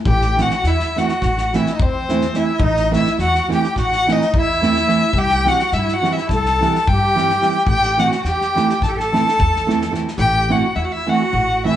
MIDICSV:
0, 0, Header, 1, 6, 480
1, 0, Start_track
1, 0, Tempo, 561798
1, 48, Time_signature, 9, 3, 24, 8
1, 10049, End_track
2, 0, Start_track
2, 0, Title_t, "Violin"
2, 0, Program_c, 0, 40
2, 67, Note_on_c, 0, 79, 98
2, 354, Note_on_c, 0, 78, 82
2, 367, Note_off_c, 0, 79, 0
2, 576, Note_on_c, 0, 76, 83
2, 588, Note_off_c, 0, 78, 0
2, 837, Note_on_c, 0, 78, 76
2, 850, Note_off_c, 0, 76, 0
2, 1325, Note_on_c, 0, 76, 83
2, 1338, Note_off_c, 0, 78, 0
2, 1482, Note_off_c, 0, 76, 0
2, 1487, Note_on_c, 0, 75, 64
2, 1553, Note_on_c, 0, 72, 83
2, 1565, Note_off_c, 0, 75, 0
2, 2018, Note_on_c, 0, 76, 77
2, 2031, Note_off_c, 0, 72, 0
2, 2228, Note_on_c, 0, 75, 103
2, 2241, Note_off_c, 0, 76, 0
2, 2499, Note_off_c, 0, 75, 0
2, 2516, Note_on_c, 0, 76, 91
2, 2712, Note_off_c, 0, 76, 0
2, 2747, Note_on_c, 0, 78, 80
2, 2988, Note_off_c, 0, 78, 0
2, 3012, Note_on_c, 0, 79, 78
2, 3209, Note_off_c, 0, 79, 0
2, 3246, Note_on_c, 0, 78, 107
2, 3524, Note_on_c, 0, 75, 94
2, 3537, Note_off_c, 0, 78, 0
2, 3727, Note_off_c, 0, 75, 0
2, 3758, Note_on_c, 0, 76, 101
2, 4428, Note_on_c, 0, 79, 120
2, 4441, Note_off_c, 0, 76, 0
2, 4681, Note_on_c, 0, 78, 98
2, 4693, Note_off_c, 0, 79, 0
2, 4900, Note_on_c, 0, 76, 85
2, 4913, Note_off_c, 0, 78, 0
2, 5069, Note_on_c, 0, 78, 88
2, 5081, Note_off_c, 0, 76, 0
2, 5233, Note_on_c, 0, 76, 83
2, 5246, Note_off_c, 0, 78, 0
2, 5370, Note_off_c, 0, 76, 0
2, 5375, Note_on_c, 0, 81, 99
2, 5879, Note_on_c, 0, 79, 96
2, 5892, Note_off_c, 0, 81, 0
2, 6548, Note_off_c, 0, 79, 0
2, 6554, Note_on_c, 0, 79, 115
2, 6827, Note_on_c, 0, 78, 91
2, 6840, Note_off_c, 0, 79, 0
2, 7033, Note_off_c, 0, 78, 0
2, 7039, Note_on_c, 0, 79, 99
2, 7545, Note_on_c, 0, 81, 90
2, 7557, Note_off_c, 0, 79, 0
2, 7596, Note_on_c, 0, 79, 67
2, 7609, Note_off_c, 0, 81, 0
2, 7676, Note_on_c, 0, 81, 96
2, 7689, Note_off_c, 0, 79, 0
2, 8491, Note_off_c, 0, 81, 0
2, 8704, Note_on_c, 0, 79, 111
2, 8982, Note_on_c, 0, 78, 83
2, 8995, Note_off_c, 0, 79, 0
2, 9194, Note_on_c, 0, 76, 66
2, 9207, Note_off_c, 0, 78, 0
2, 9265, Note_on_c, 0, 78, 71
2, 9278, Note_off_c, 0, 76, 0
2, 9330, Note_on_c, 0, 76, 85
2, 9343, Note_off_c, 0, 78, 0
2, 9475, Note_on_c, 0, 78, 87
2, 9488, Note_off_c, 0, 76, 0
2, 9956, Note_off_c, 0, 78, 0
2, 9961, Note_on_c, 0, 76, 81
2, 10049, Note_off_c, 0, 76, 0
2, 10049, End_track
3, 0, Start_track
3, 0, Title_t, "Accordion"
3, 0, Program_c, 1, 21
3, 56, Note_on_c, 1, 67, 78
3, 308, Note_off_c, 1, 67, 0
3, 340, Note_on_c, 1, 66, 79
3, 554, Note_off_c, 1, 66, 0
3, 560, Note_on_c, 1, 64, 74
3, 828, Note_off_c, 1, 64, 0
3, 852, Note_on_c, 1, 66, 83
3, 1333, Note_on_c, 1, 64, 70
3, 1334, Note_off_c, 1, 66, 0
3, 1484, Note_on_c, 1, 63, 44
3, 1493, Note_off_c, 1, 64, 0
3, 1536, Note_off_c, 1, 63, 0
3, 1546, Note_on_c, 1, 60, 80
3, 2008, Note_off_c, 1, 60, 0
3, 2027, Note_on_c, 1, 64, 74
3, 2218, Note_on_c, 1, 63, 81
3, 2231, Note_off_c, 1, 64, 0
3, 2494, Note_off_c, 1, 63, 0
3, 2511, Note_on_c, 1, 64, 66
3, 2710, Note_off_c, 1, 64, 0
3, 2735, Note_on_c, 1, 66, 82
3, 2982, Note_off_c, 1, 66, 0
3, 3009, Note_on_c, 1, 67, 78
3, 3207, Note_off_c, 1, 67, 0
3, 3216, Note_on_c, 1, 66, 82
3, 3470, Note_off_c, 1, 66, 0
3, 3505, Note_on_c, 1, 63, 77
3, 3718, Note_off_c, 1, 63, 0
3, 3721, Note_on_c, 1, 64, 93
3, 4358, Note_off_c, 1, 64, 0
3, 4415, Note_on_c, 1, 67, 93
3, 4675, Note_off_c, 1, 67, 0
3, 4689, Note_on_c, 1, 66, 82
3, 4896, Note_off_c, 1, 66, 0
3, 4926, Note_on_c, 1, 64, 93
3, 5070, Note_on_c, 1, 66, 78
3, 5086, Note_off_c, 1, 64, 0
3, 5232, Note_off_c, 1, 66, 0
3, 5272, Note_on_c, 1, 64, 88
3, 5398, Note_off_c, 1, 64, 0
3, 5416, Note_on_c, 1, 69, 98
3, 5858, Note_off_c, 1, 69, 0
3, 5917, Note_on_c, 1, 67, 88
3, 6555, Note_off_c, 1, 67, 0
3, 6568, Note_on_c, 1, 67, 76
3, 6812, Note_off_c, 1, 67, 0
3, 6855, Note_on_c, 1, 66, 77
3, 7058, Note_off_c, 1, 66, 0
3, 7069, Note_on_c, 1, 67, 83
3, 7515, Note_off_c, 1, 67, 0
3, 7563, Note_on_c, 1, 69, 69
3, 7587, Note_on_c, 1, 67, 58
3, 7616, Note_off_c, 1, 69, 0
3, 7652, Note_on_c, 1, 69, 88
3, 7662, Note_off_c, 1, 67, 0
3, 8479, Note_off_c, 1, 69, 0
3, 8695, Note_on_c, 1, 67, 74
3, 8950, Note_off_c, 1, 67, 0
3, 8959, Note_on_c, 1, 66, 72
3, 9185, Note_off_c, 1, 66, 0
3, 9190, Note_on_c, 1, 64, 70
3, 9258, Note_off_c, 1, 64, 0
3, 9265, Note_on_c, 1, 66, 58
3, 9329, Note_off_c, 1, 66, 0
3, 9345, Note_on_c, 1, 64, 78
3, 9473, Note_off_c, 1, 64, 0
3, 9482, Note_on_c, 1, 66, 83
3, 9963, Note_off_c, 1, 66, 0
3, 9977, Note_on_c, 1, 64, 72
3, 10049, Note_off_c, 1, 64, 0
3, 10049, End_track
4, 0, Start_track
4, 0, Title_t, "Nylon-string guitar"
4, 0, Program_c, 2, 24
4, 315, Note_on_c, 2, 52, 64
4, 323, Note_on_c, 2, 57, 52
4, 327, Note_on_c, 2, 60, 58
4, 332, Note_on_c, 2, 64, 70
4, 453, Note_off_c, 2, 52, 0
4, 457, Note_off_c, 2, 57, 0
4, 459, Note_off_c, 2, 60, 0
4, 461, Note_off_c, 2, 64, 0
4, 822, Note_on_c, 2, 52, 54
4, 826, Note_on_c, 2, 57, 62
4, 830, Note_on_c, 2, 60, 50
4, 837, Note_on_c, 2, 64, 65
4, 955, Note_off_c, 2, 52, 0
4, 957, Note_off_c, 2, 57, 0
4, 959, Note_off_c, 2, 60, 0
4, 963, Note_off_c, 2, 64, 0
4, 1313, Note_on_c, 2, 52, 69
4, 1320, Note_on_c, 2, 57, 58
4, 1325, Note_on_c, 2, 60, 58
4, 1328, Note_on_c, 2, 64, 70
4, 1449, Note_off_c, 2, 52, 0
4, 1453, Note_off_c, 2, 57, 0
4, 1455, Note_off_c, 2, 60, 0
4, 1457, Note_off_c, 2, 64, 0
4, 1784, Note_on_c, 2, 52, 66
4, 1787, Note_on_c, 2, 57, 61
4, 1794, Note_on_c, 2, 60, 63
4, 1799, Note_on_c, 2, 64, 74
4, 1917, Note_off_c, 2, 52, 0
4, 1918, Note_off_c, 2, 57, 0
4, 1922, Note_off_c, 2, 60, 0
4, 1923, Note_off_c, 2, 64, 0
4, 2003, Note_on_c, 2, 52, 49
4, 2008, Note_on_c, 2, 57, 53
4, 2014, Note_on_c, 2, 60, 49
4, 2021, Note_on_c, 2, 64, 69
4, 2133, Note_off_c, 2, 52, 0
4, 2136, Note_off_c, 2, 57, 0
4, 2138, Note_off_c, 2, 60, 0
4, 2142, Note_off_c, 2, 64, 0
4, 2489, Note_on_c, 2, 52, 70
4, 2494, Note_on_c, 2, 57, 66
4, 2495, Note_on_c, 2, 60, 59
4, 2507, Note_on_c, 2, 64, 69
4, 2625, Note_off_c, 2, 52, 0
4, 2627, Note_off_c, 2, 60, 0
4, 2628, Note_off_c, 2, 57, 0
4, 2634, Note_off_c, 2, 64, 0
4, 2977, Note_on_c, 2, 52, 65
4, 2982, Note_on_c, 2, 57, 57
4, 2986, Note_on_c, 2, 60, 61
4, 2993, Note_on_c, 2, 64, 69
4, 3117, Note_off_c, 2, 52, 0
4, 3120, Note_off_c, 2, 57, 0
4, 3122, Note_off_c, 2, 60, 0
4, 3125, Note_off_c, 2, 64, 0
4, 3478, Note_on_c, 2, 52, 78
4, 3482, Note_on_c, 2, 57, 62
4, 3488, Note_on_c, 2, 60, 64
4, 3491, Note_on_c, 2, 64, 75
4, 3616, Note_off_c, 2, 52, 0
4, 3618, Note_off_c, 2, 57, 0
4, 3619, Note_off_c, 2, 60, 0
4, 3622, Note_off_c, 2, 64, 0
4, 3944, Note_on_c, 2, 52, 68
4, 3946, Note_on_c, 2, 57, 65
4, 3955, Note_on_c, 2, 60, 62
4, 3963, Note_on_c, 2, 64, 83
4, 4080, Note_off_c, 2, 52, 0
4, 4081, Note_off_c, 2, 57, 0
4, 4085, Note_off_c, 2, 60, 0
4, 4089, Note_off_c, 2, 64, 0
4, 4162, Note_on_c, 2, 52, 61
4, 4166, Note_on_c, 2, 57, 62
4, 4170, Note_on_c, 2, 60, 49
4, 4176, Note_on_c, 2, 64, 72
4, 4296, Note_off_c, 2, 52, 0
4, 4297, Note_off_c, 2, 57, 0
4, 4300, Note_off_c, 2, 60, 0
4, 4301, Note_off_c, 2, 64, 0
4, 4656, Note_on_c, 2, 52, 58
4, 4662, Note_on_c, 2, 55, 60
4, 4667, Note_on_c, 2, 60, 66
4, 4671, Note_on_c, 2, 64, 63
4, 4791, Note_off_c, 2, 52, 0
4, 4794, Note_off_c, 2, 55, 0
4, 4796, Note_off_c, 2, 60, 0
4, 4798, Note_off_c, 2, 64, 0
4, 5140, Note_on_c, 2, 52, 60
4, 5149, Note_on_c, 2, 55, 61
4, 5151, Note_on_c, 2, 60, 63
4, 5157, Note_on_c, 2, 64, 80
4, 5280, Note_off_c, 2, 52, 0
4, 5285, Note_off_c, 2, 55, 0
4, 5286, Note_off_c, 2, 60, 0
4, 5289, Note_off_c, 2, 64, 0
4, 5644, Note_on_c, 2, 52, 71
4, 5653, Note_on_c, 2, 55, 65
4, 5657, Note_on_c, 2, 60, 65
4, 5660, Note_on_c, 2, 64, 77
4, 5780, Note_off_c, 2, 52, 0
4, 5785, Note_off_c, 2, 55, 0
4, 5786, Note_off_c, 2, 60, 0
4, 5786, Note_off_c, 2, 64, 0
4, 6109, Note_on_c, 2, 52, 65
4, 6115, Note_on_c, 2, 55, 56
4, 6120, Note_on_c, 2, 60, 68
4, 6126, Note_on_c, 2, 64, 72
4, 6243, Note_off_c, 2, 52, 0
4, 6246, Note_off_c, 2, 55, 0
4, 6248, Note_off_c, 2, 60, 0
4, 6251, Note_off_c, 2, 64, 0
4, 6334, Note_on_c, 2, 52, 59
4, 6340, Note_on_c, 2, 55, 47
4, 6344, Note_on_c, 2, 60, 54
4, 6349, Note_on_c, 2, 64, 68
4, 6462, Note_off_c, 2, 52, 0
4, 6465, Note_off_c, 2, 55, 0
4, 6466, Note_off_c, 2, 60, 0
4, 6469, Note_off_c, 2, 64, 0
4, 6813, Note_on_c, 2, 52, 68
4, 6816, Note_on_c, 2, 57, 63
4, 6826, Note_on_c, 2, 60, 61
4, 6829, Note_on_c, 2, 64, 71
4, 6949, Note_off_c, 2, 52, 0
4, 6951, Note_off_c, 2, 57, 0
4, 6955, Note_off_c, 2, 60, 0
4, 6957, Note_off_c, 2, 64, 0
4, 7307, Note_on_c, 2, 52, 62
4, 7313, Note_on_c, 2, 57, 62
4, 7316, Note_on_c, 2, 60, 51
4, 7324, Note_on_c, 2, 64, 72
4, 7443, Note_off_c, 2, 52, 0
4, 7445, Note_off_c, 2, 57, 0
4, 7447, Note_off_c, 2, 60, 0
4, 7451, Note_off_c, 2, 64, 0
4, 7793, Note_on_c, 2, 52, 68
4, 7800, Note_on_c, 2, 57, 55
4, 7805, Note_on_c, 2, 60, 69
4, 7810, Note_on_c, 2, 64, 73
4, 7932, Note_off_c, 2, 52, 0
4, 7936, Note_off_c, 2, 57, 0
4, 7937, Note_off_c, 2, 60, 0
4, 7940, Note_off_c, 2, 64, 0
4, 8261, Note_on_c, 2, 52, 81
4, 8267, Note_on_c, 2, 57, 60
4, 8272, Note_on_c, 2, 60, 68
4, 8275, Note_on_c, 2, 64, 81
4, 8395, Note_off_c, 2, 52, 0
4, 8398, Note_off_c, 2, 57, 0
4, 8401, Note_off_c, 2, 60, 0
4, 8403, Note_off_c, 2, 64, 0
4, 8464, Note_on_c, 2, 52, 67
4, 8469, Note_on_c, 2, 57, 61
4, 8473, Note_on_c, 2, 60, 59
4, 8480, Note_on_c, 2, 64, 75
4, 8603, Note_off_c, 2, 52, 0
4, 8606, Note_off_c, 2, 57, 0
4, 8608, Note_off_c, 2, 60, 0
4, 8611, Note_off_c, 2, 64, 0
4, 8962, Note_on_c, 2, 52, 62
4, 8969, Note_on_c, 2, 57, 59
4, 8969, Note_on_c, 2, 60, 58
4, 8976, Note_on_c, 2, 64, 78
4, 9099, Note_off_c, 2, 52, 0
4, 9101, Note_off_c, 2, 60, 0
4, 9102, Note_off_c, 2, 57, 0
4, 9106, Note_off_c, 2, 64, 0
4, 9453, Note_on_c, 2, 52, 67
4, 9457, Note_on_c, 2, 57, 68
4, 9464, Note_on_c, 2, 60, 57
4, 9468, Note_on_c, 2, 64, 73
4, 9590, Note_off_c, 2, 52, 0
4, 9592, Note_off_c, 2, 57, 0
4, 9595, Note_off_c, 2, 60, 0
4, 9597, Note_off_c, 2, 64, 0
4, 9949, Note_on_c, 2, 52, 69
4, 9950, Note_on_c, 2, 57, 64
4, 9954, Note_on_c, 2, 60, 62
4, 9959, Note_on_c, 2, 64, 72
4, 10049, Note_off_c, 2, 52, 0
4, 10049, Note_off_c, 2, 57, 0
4, 10049, Note_off_c, 2, 60, 0
4, 10049, Note_off_c, 2, 64, 0
4, 10049, End_track
5, 0, Start_track
5, 0, Title_t, "Upright bass"
5, 0, Program_c, 3, 32
5, 49, Note_on_c, 3, 33, 109
5, 347, Note_off_c, 3, 33, 0
5, 542, Note_on_c, 3, 40, 80
5, 708, Note_off_c, 3, 40, 0
5, 1044, Note_on_c, 3, 33, 79
5, 1342, Note_off_c, 3, 33, 0
5, 1537, Note_on_c, 3, 40, 76
5, 1946, Note_off_c, 3, 40, 0
5, 2223, Note_on_c, 3, 33, 99
5, 2520, Note_off_c, 3, 33, 0
5, 2720, Note_on_c, 3, 40, 85
5, 2884, Note_off_c, 3, 40, 0
5, 3217, Note_on_c, 3, 33, 80
5, 3513, Note_off_c, 3, 33, 0
5, 3707, Note_on_c, 3, 40, 79
5, 4114, Note_off_c, 3, 40, 0
5, 4385, Note_on_c, 3, 36, 102
5, 4682, Note_off_c, 3, 36, 0
5, 4889, Note_on_c, 3, 43, 93
5, 5051, Note_off_c, 3, 43, 0
5, 5383, Note_on_c, 3, 36, 84
5, 5678, Note_off_c, 3, 36, 0
5, 5879, Note_on_c, 3, 43, 81
5, 6282, Note_off_c, 3, 43, 0
5, 6550, Note_on_c, 3, 33, 98
5, 6845, Note_off_c, 3, 33, 0
5, 7040, Note_on_c, 3, 40, 79
5, 7204, Note_off_c, 3, 40, 0
5, 7521, Note_on_c, 3, 33, 81
5, 7820, Note_off_c, 3, 33, 0
5, 8020, Note_on_c, 3, 40, 91
5, 8426, Note_off_c, 3, 40, 0
5, 8696, Note_on_c, 3, 33, 113
5, 8992, Note_off_c, 3, 33, 0
5, 9188, Note_on_c, 3, 40, 88
5, 9352, Note_off_c, 3, 40, 0
5, 9679, Note_on_c, 3, 33, 97
5, 9974, Note_off_c, 3, 33, 0
5, 10049, End_track
6, 0, Start_track
6, 0, Title_t, "Drums"
6, 46, Note_on_c, 9, 36, 85
6, 132, Note_off_c, 9, 36, 0
6, 184, Note_on_c, 9, 38, 31
6, 269, Note_off_c, 9, 38, 0
6, 325, Note_on_c, 9, 38, 26
6, 410, Note_off_c, 9, 38, 0
6, 431, Note_on_c, 9, 38, 27
6, 517, Note_off_c, 9, 38, 0
6, 545, Note_on_c, 9, 38, 28
6, 630, Note_off_c, 9, 38, 0
6, 683, Note_on_c, 9, 38, 24
6, 768, Note_off_c, 9, 38, 0
6, 831, Note_on_c, 9, 38, 27
6, 917, Note_off_c, 9, 38, 0
6, 930, Note_on_c, 9, 38, 22
6, 1015, Note_off_c, 9, 38, 0
6, 1042, Note_on_c, 9, 36, 65
6, 1042, Note_on_c, 9, 38, 27
6, 1128, Note_off_c, 9, 36, 0
6, 1128, Note_off_c, 9, 38, 0
6, 1176, Note_on_c, 9, 38, 31
6, 1262, Note_off_c, 9, 38, 0
6, 1310, Note_on_c, 9, 38, 31
6, 1395, Note_off_c, 9, 38, 0
6, 1423, Note_on_c, 9, 38, 30
6, 1508, Note_off_c, 9, 38, 0
6, 1534, Note_on_c, 9, 36, 100
6, 1619, Note_off_c, 9, 36, 0
6, 1783, Note_on_c, 9, 38, 32
6, 1868, Note_off_c, 9, 38, 0
6, 1891, Note_on_c, 9, 38, 29
6, 1977, Note_off_c, 9, 38, 0
6, 1999, Note_on_c, 9, 38, 28
6, 2084, Note_off_c, 9, 38, 0
6, 2218, Note_on_c, 9, 36, 101
6, 2303, Note_off_c, 9, 36, 0
6, 2364, Note_on_c, 9, 38, 27
6, 2449, Note_off_c, 9, 38, 0
6, 2504, Note_on_c, 9, 38, 26
6, 2589, Note_off_c, 9, 38, 0
6, 2616, Note_on_c, 9, 38, 27
6, 2701, Note_off_c, 9, 38, 0
6, 2724, Note_on_c, 9, 38, 30
6, 2809, Note_off_c, 9, 38, 0
6, 2861, Note_on_c, 9, 38, 27
6, 2946, Note_off_c, 9, 38, 0
6, 3001, Note_on_c, 9, 38, 23
6, 3086, Note_off_c, 9, 38, 0
6, 3110, Note_on_c, 9, 38, 23
6, 3196, Note_off_c, 9, 38, 0
6, 3213, Note_on_c, 9, 36, 54
6, 3218, Note_on_c, 9, 38, 27
6, 3299, Note_off_c, 9, 36, 0
6, 3304, Note_off_c, 9, 38, 0
6, 3352, Note_on_c, 9, 38, 29
6, 3438, Note_off_c, 9, 38, 0
6, 3489, Note_on_c, 9, 38, 27
6, 3575, Note_off_c, 9, 38, 0
6, 3600, Note_on_c, 9, 38, 22
6, 3686, Note_off_c, 9, 38, 0
6, 3706, Note_on_c, 9, 36, 92
6, 3791, Note_off_c, 9, 36, 0
6, 3956, Note_on_c, 9, 38, 27
6, 4042, Note_off_c, 9, 38, 0
6, 4067, Note_on_c, 9, 38, 25
6, 4152, Note_off_c, 9, 38, 0
6, 4174, Note_on_c, 9, 38, 22
6, 4260, Note_off_c, 9, 38, 0
6, 4386, Note_on_c, 9, 36, 69
6, 4471, Note_off_c, 9, 36, 0
6, 4520, Note_on_c, 9, 38, 27
6, 4605, Note_off_c, 9, 38, 0
6, 4673, Note_on_c, 9, 38, 27
6, 4759, Note_off_c, 9, 38, 0
6, 4778, Note_on_c, 9, 38, 26
6, 4864, Note_off_c, 9, 38, 0
6, 4888, Note_on_c, 9, 38, 27
6, 4973, Note_off_c, 9, 38, 0
6, 5027, Note_on_c, 9, 38, 23
6, 5112, Note_off_c, 9, 38, 0
6, 5160, Note_on_c, 9, 38, 20
6, 5246, Note_off_c, 9, 38, 0
6, 5279, Note_on_c, 9, 38, 21
6, 5365, Note_off_c, 9, 38, 0
6, 5375, Note_on_c, 9, 36, 62
6, 5382, Note_on_c, 9, 38, 27
6, 5461, Note_off_c, 9, 36, 0
6, 5467, Note_off_c, 9, 38, 0
6, 5517, Note_on_c, 9, 38, 28
6, 5602, Note_off_c, 9, 38, 0
6, 5655, Note_on_c, 9, 38, 21
6, 5741, Note_off_c, 9, 38, 0
6, 5771, Note_on_c, 9, 38, 26
6, 5856, Note_off_c, 9, 38, 0
6, 5874, Note_on_c, 9, 36, 84
6, 5959, Note_off_c, 9, 36, 0
6, 6128, Note_on_c, 9, 38, 31
6, 6213, Note_off_c, 9, 38, 0
6, 6234, Note_on_c, 9, 38, 24
6, 6320, Note_off_c, 9, 38, 0
6, 6342, Note_on_c, 9, 38, 25
6, 6428, Note_off_c, 9, 38, 0
6, 6549, Note_on_c, 9, 36, 73
6, 6635, Note_off_c, 9, 36, 0
6, 6690, Note_on_c, 9, 38, 27
6, 6776, Note_off_c, 9, 38, 0
6, 6824, Note_on_c, 9, 38, 25
6, 6909, Note_off_c, 9, 38, 0
6, 6936, Note_on_c, 9, 38, 27
6, 7021, Note_off_c, 9, 38, 0
6, 7046, Note_on_c, 9, 38, 31
6, 7132, Note_off_c, 9, 38, 0
6, 7189, Note_on_c, 9, 38, 24
6, 7275, Note_off_c, 9, 38, 0
6, 7318, Note_on_c, 9, 38, 23
6, 7404, Note_off_c, 9, 38, 0
6, 7429, Note_on_c, 9, 38, 23
6, 7514, Note_off_c, 9, 38, 0
6, 7536, Note_on_c, 9, 36, 69
6, 7546, Note_on_c, 9, 38, 27
6, 7622, Note_off_c, 9, 36, 0
6, 7631, Note_off_c, 9, 38, 0
6, 7688, Note_on_c, 9, 38, 27
6, 7773, Note_off_c, 9, 38, 0
6, 7820, Note_on_c, 9, 38, 25
6, 7906, Note_off_c, 9, 38, 0
6, 7932, Note_on_c, 9, 38, 31
6, 8018, Note_off_c, 9, 38, 0
6, 8030, Note_on_c, 9, 36, 92
6, 8116, Note_off_c, 9, 36, 0
6, 8170, Note_on_c, 9, 38, 25
6, 8255, Note_off_c, 9, 38, 0
6, 8284, Note_on_c, 9, 38, 30
6, 8370, Note_off_c, 9, 38, 0
6, 8386, Note_on_c, 9, 38, 29
6, 8472, Note_off_c, 9, 38, 0
6, 8497, Note_on_c, 9, 38, 30
6, 8582, Note_off_c, 9, 38, 0
6, 8612, Note_on_c, 9, 38, 30
6, 8698, Note_off_c, 9, 38, 0
6, 10049, End_track
0, 0, End_of_file